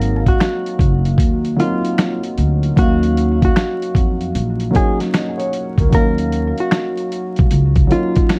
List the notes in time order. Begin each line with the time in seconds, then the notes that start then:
Already playing: G#1 F#3 A#3 C4 D#4 A#4 F5
0.01 closed hi-hat
0.26 F#4, kick, closed hi-hat
0.40 finger snap, snare, closed hi-hat
0.66 closed hi-hat
0.79 F#1, kick, closed hi-hat
1.05 closed hi-hat
1.18 D#2, kick, closed hi-hat
1.45 closed hi-hat
1.56 F#3 A#3 C4 D#4 F4, closed hi-hat
1.61 F4
1.85 closed hi-hat
1.98 finger snap, snare, closed hi-hat
2.24 closed hi-hat
2.38 D2, closed hi-hat
2.63 closed hi-hat
2.76 D#2 F#3 A#3 C#4 D#4 F#4, kick, closed hi-hat
2.81 F5
3.03 closed hi-hat
3.17 closed hi-hat
3.42 F#4, kick, closed hi-hat
3.56 finger snap, snare, closed hi-hat
3.82 closed hi-hat
3.95 F2, kick, closed hi-hat
4.21 closed hi-hat
4.35 A#1, closed hi-hat
4.60 closed hi-hat
4.71 F#3 A#3 C#4 D#4
4.75 F#4 G#4, kick, closed hi-hat
5.00 snare, closed hi-hat
5.14 D#5, finger snap, snare, closed hi-hat
5.37 C#5, closed hi-hat
5.53 closed hi-hat
5.78 D2 A#4, kick, closed hi-hat
5.90 D#2 F#3 A#3 C#4 D#4, kick, closed hi-hat
5.95 A#4 F5
6.18 closed hi-hat
6.32 closed hi-hat
6.58 F#4, closed hi-hat
6.71 finger snap, snare, closed hi-hat
6.97 closed hi-hat
7.12 closed hi-hat
7.36 C2, kick, closed hi-hat
7.51 C#2, closed hi-hat
7.76 kick, closed hi-hat
7.87 F#3 A#3 C#4 D#4, closed hi-hat
7.92 F4
8.16 kick, closed hi-hat
8.29 finger snap, snare, closed hi-hat